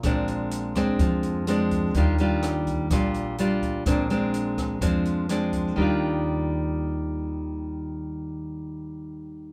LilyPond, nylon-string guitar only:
\new Staff \with { instrumentName = "Nylon-string guitar" } { \time 4/4 \key ees \major \tempo 4 = 126 << { <aes c' d'>4. <aes c' d'>4. <aes c' d'>4 | <g d' f'>8 <g d' f'>4. <g d' f'>4 <g d' f'>4 | <aes c' d'>8 <aes c' d'>4. <aes c' d'>4 <aes c' d'>4 | <ees g d' f'>1~ |
<ees g d' f'>1 | } \\ { bes,2 f2 | ees2 bes,2 | bes,2 f2 | r1 |
r1 | } >> }